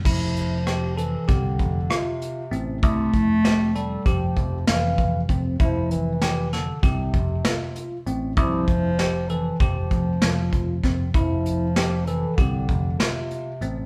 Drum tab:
CC |x--------|---------|---------|---------|
HH |-xxxxxxxx|xxxxxxxxx|xxxxxxxxx|xxxxxxxxx|
SD |--r---r--|--o---o--|--oo--o--|--o---o-o|
BD |o---oo---|oo--oo-oo|o---oo---|oo--oo-oo|

CC |---------|
HH |xxxxxxxxx|
SD |--o---o--|
BD |o---oo---|